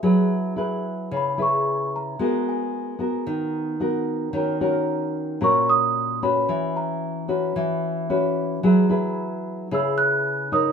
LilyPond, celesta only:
\new Staff \with { instrumentName = "Celesta" } { \time 4/4 \key fis \mixolydian \tempo 4 = 112 r2 b''8 cis'''4 ais''8~ | ais''8 gis''4. r2 | r2 cis'''8 dis'''4 b''8~ | b''8 ais''4. r2 |
r2 e'''8 fis'''4 dis'''8 | }